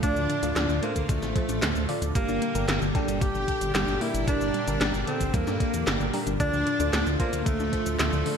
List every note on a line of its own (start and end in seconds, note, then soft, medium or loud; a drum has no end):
0.00 0.14 D2 loud
0.00 2.11 A2 medium
0.00 6.36 D3 medium
0.00 2.11 F3 medium
0.00 0.12 A3 loud
0.00 8.37 D4 medium
0.00 0.52 D4 loud
0.00 2.11 F4 medium
0.00 0.40 F4 medium
0.00 0.40 A4 medium
0.00 0.40 D5 loud
0.00 kick loud
0.00 closed hi-hat loud
0.00 cabasa soft
0.16 0.27 D2 medium
0.16 0.28 D3 medium
0.16 cabasa soft
0.29 0.35 D3 loud
0.29 closed hi-hat medium
0.43 0.53 D2 medium
0.43 0.48 D3 loud
0.43 0.79 F4 loud
0.43 0.79 A4 medium
0.43 0.79 D5 loud
0.43 closed hi-hat medium
0.43 cabasa medium
0.56 0.67 D2 loud
0.56 0.62 F3 loud
0.56 0.81 D4 loud
0.56 snare loud
0.56 clap loud
0.56 closed hi-hat loud
0.56 cabasa soft
0.69 0.80 D2 medium
0.69 0.79 D4 loud
0.69 cabasa soft
0.83 0.92 A3 loud
0.83 1.11 A#3 medium
0.83 1.07 A#3 medium
0.83 1.33 F4 medium
0.83 1.33 A4 medium
0.83 1.33 C5 loud
0.83 closed hi-hat medium
0.96 1.07 D2 medium
0.96 1.08 D3 medium
0.96 kick medium
0.96 closed hi-hat medium
0.96 cabasa medium
1.09 1.20 D2 loud
1.09 1.15 D3 loud
1.09 1.35 A3 loud
1.09 1.34 A3 medium
1.09 kick loud
1.09 closed hi-hat loud
1.09 cabasa soft
1.22 1.33 A1 medium
1.22 1.28 D3 loud
1.22 snare soft
1.22 cabasa soft
1.36 1.41 F3 loud
1.36 1.85 A3 medium
1.36 1.86 F4 medium
1.36 1.86 A4 medium
1.36 1.86 C5 medium
1.36 kick loud
1.36 closed hi-hat medium
1.49 1.60 A1 medium
1.49 1.58 D4 loud
1.49 closed hi-hat medium
1.49 cabasa medium
1.62 1.73 D2 loud
1.62 1.72 A3 loud
1.62 snare loud
1.62 clap loud
1.62 closed hi-hat loud
1.62 cabasa soft
1.75 1.86 D2 medium
1.75 1.88 D3 medium
1.75 cabasa soft
1.89 1.94 D3 loud
1.89 2.12 F4 medium
1.89 2.12 A4 medium
1.89 2.12 D5 loud
1.89 open hi-hat medium
2.02 2.13 D2 medium
2.02 2.08 D3 loud
2.02 closed hi-hat medium
2.02 cabasa medium
2.15 2.26 G1 loud
2.15 6.36 A#2 medium
2.15 6.36 G3 medium
2.15 2.21 G3 loud
2.15 2.65 A#3 loud
2.15 2.52 D4 medium
2.15 2.52 G4 medium
2.15 6.36 G4 medium
2.15 2.52 A#4 loud
2.15 kick loud
2.15 closed hi-hat loud
2.15 cabasa soft
2.29 2.39 G1 medium
2.29 2.38 D4 loud
2.29 cabasa soft
2.42 2.51 A#3 loud
2.42 closed hi-hat medium
2.55 2.66 G1 medium
2.55 2.67 D3 medium
2.55 2.92 D4 loud
2.55 2.92 G4 medium
2.55 2.92 A#4 loud
2.55 closed hi-hat medium
2.55 cabasa medium
2.68 2.79 G1 loud
2.68 2.74 D3 loud
2.68 2.80 A#3 loud
2.68 snare loud
2.68 clap medium
2.68 closed hi-hat loud
2.68 cabasa soft
2.82 2.92 G1 medium
2.82 2.87 D3 loud
2.82 cabasa soft
2.95 3.20 G3 loud
2.95 3.01 G3 loud
2.95 3.23 G3 loud
2.95 3.45 D4 loud
2.95 3.45 G4 medium
2.95 3.45 A4 loud
2.95 kick loud
2.95 closed hi-hat medium
3.08 3.19 G1 medium
3.08 3.18 D4 loud
3.08 closed hi-hat medium
3.08 cabasa medium
3.21 3.32 G1 loud
3.21 3.31 A#3 loud
3.21 3.71 G4 loud
3.21 3.74 G4 loud
3.21 kick loud
3.21 closed hi-hat loud
3.21 cabasa soft
3.35 3.45 G1 medium
3.35 3.47 D3 medium
3.35 cabasa soft
3.48 3.54 D3 loud
3.48 3.98 D4 medium
3.48 3.98 G4 medium
3.48 3.98 A4 medium
3.48 kick medium
3.48 closed hi-hat medium
3.61 3.72 G1 medium
3.61 3.67 D3 loud
3.61 closed hi-hat medium
3.61 cabasa medium
3.75 3.85 G1 loud
3.75 3.80 G3 loud
3.75 4.03 G4 loud
3.75 3.99 G4 loud
3.75 snare loud
3.75 clap medium
3.75 closed hi-hat loud
3.75 cabasa soft
3.88 3.98 G1 medium
3.88 3.97 D4 loud
3.88 cabasa soft
4.01 4.11 A#3 loud
4.01 4.25 D4 medium
4.01 4.27 E4 loud
4.01 4.26 E4 loud
4.01 4.25 G4 medium
4.01 4.25 A#4 loud
4.01 open hi-hat medium
4.14 4.25 G1 medium
4.14 4.26 D3 medium
4.14 closed hi-hat medium
4.14 cabasa medium
4.28 4.38 G1 loud
4.28 4.33 D3 loud
4.28 4.64 D4 medium
4.28 4.77 D4 loud
4.28 4.64 G4 medium
4.28 4.64 A#4 loud
4.28 kick loud
4.28 closed hi-hat medium
4.28 cabasa medium
4.41 4.52 G1 medium
4.41 4.47 D3 loud
4.41 cabasa soft
4.54 4.60 G3 loud
4.54 closed hi-hat medium
4.67 4.78 G1 medium
4.67 4.77 D4 loud
4.67 5.04 D4 loud
4.67 5.04 G4 medium
4.67 5.04 A#4 loud
4.67 closed hi-hat medium
4.67 cabasa medium
4.81 4.91 G1 loud
4.81 4.90 A#3 loud
4.81 4.93 D4 loud
4.81 snare loud
4.81 clap medium
4.81 closed hi-hat medium
4.81 cabasa medium
4.94 5.05 G1 medium
4.94 5.06 D3 medium
4.94 cabasa soft
5.07 5.13 D3 loud
5.07 5.35 C4 loud
5.07 5.32 C4 medium
5.07 5.58 D4 medium
5.07 5.58 G4 medium
5.07 5.58 A4 loud
5.07 closed hi-hat medium
5.21 5.31 G1 medium
5.21 5.26 D3 loud
5.21 kick medium
5.21 closed hi-hat medium
5.21 cabasa medium
5.34 5.45 E2 loud
5.34 5.40 G3 loud
5.34 6.14 A#3 loud
5.34 6.10 A#3 medium
5.34 kick loud
5.34 closed hi-hat loud
5.34 cabasa medium
5.47 5.58 G2 medium
5.47 5.57 D4 loud
5.47 snare soft
5.47 cabasa soft
5.60 5.70 A#3 loud
5.60 6.10 D4 medium
5.60 6.10 G4 medium
5.60 6.10 A4 medium
5.60 kick loud
5.60 closed hi-hat medium
5.74 5.84 E2 medium
5.74 5.86 D3 medium
5.74 closed hi-hat medium
5.74 cabasa medium
5.87 5.98 G1 loud
5.87 5.93 D3 loud
5.87 snare loud
5.87 clap medium
5.87 closed hi-hat medium
5.87 cabasa medium
6.00 6.11 G1 medium
6.00 6.06 D3 loud
6.00 cabasa soft
6.13 6.19 G3 loud
6.13 6.37 D4 loud
6.13 6.37 G4 medium
6.13 6.37 A#4 loud
6.13 open hi-hat medium
6.27 6.37 G1 medium
6.27 6.36 D4 loud
6.27 closed hi-hat medium
6.27 cabasa medium
6.40 6.51 D2 loud
6.40 8.37 A2 medium
6.40 6.46 D3 loud
6.40 8.37 D3 medium
6.40 8.37 F3 medium
6.40 6.89 D4 loud
6.40 6.77 F4 medium
6.40 8.37 F4 loud
6.40 6.77 A4 medium
6.40 6.77 D5 loud
6.40 kick loud
6.40 closed hi-hat medium
6.40 cabasa medium
6.53 6.64 D2 medium
6.53 6.59 D3 loud
6.53 cabasa soft
6.67 6.79 D3 loud
6.67 closed hi-hat medium
6.80 6.90 D2 medium
6.80 6.89 D4 loud
6.80 7.17 F4 loud
6.80 7.17 A4 medium
6.80 7.17 D5 loud
6.80 closed hi-hat medium
6.80 cabasa medium
6.93 7.04 D2 loud
6.93 7.03 A3 loud
6.93 7.05 D4 loud
6.93 snare loud
6.93 clap medium
6.93 closed hi-hat medium
6.93 cabasa medium
7.06 7.17 D2 medium
7.06 7.19 D3 medium
7.06 cabasa soft
7.20 7.25 D3 loud
7.20 7.48 A#3 loud
7.20 7.45 A#3 loud
7.20 7.70 F4 loud
7.20 7.70 A4 medium
7.20 7.70 C5 loud
7.20 kick loud
7.20 closed hi-hat medium
7.33 7.44 D2 medium
7.33 7.39 D3 loud
7.33 closed hi-hat medium
7.33 cabasa medium
7.46 7.57 D2 loud
7.46 7.59 D3 loud
7.46 7.99 A3 loud
7.46 7.96 A3 loud
7.46 kick loud
7.46 closed hi-hat medium
7.46 cabasa medium
7.59 7.70 D2 medium
7.59 7.69 D4 loud
7.59 cabasa soft
7.73 7.82 A3 loud
7.73 8.23 F4 medium
7.73 8.23 A4 medium
7.73 8.23 C5 medium
7.73 kick medium
7.73 closed hi-hat medium
7.86 7.97 D2 medium
7.86 7.98 D3 medium
7.86 closed hi-hat medium
7.86 cabasa medium
7.99 8.10 D2 loud
7.99 8.05 D3 loud
7.99 8.36 A3 loud
7.99 8.37 A3 loud
7.99 snare loud
7.99 clap medium
7.99 closed hi-hat medium
7.99 cabasa medium
8.13 8.23 D2 medium
8.13 8.18 D3 loud
8.13 cabasa soft
8.26 8.37 D3 loud
8.26 8.37 F4 medium
8.26 8.37 A4 medium
8.26 8.37 D5 loud
8.26 open hi-hat medium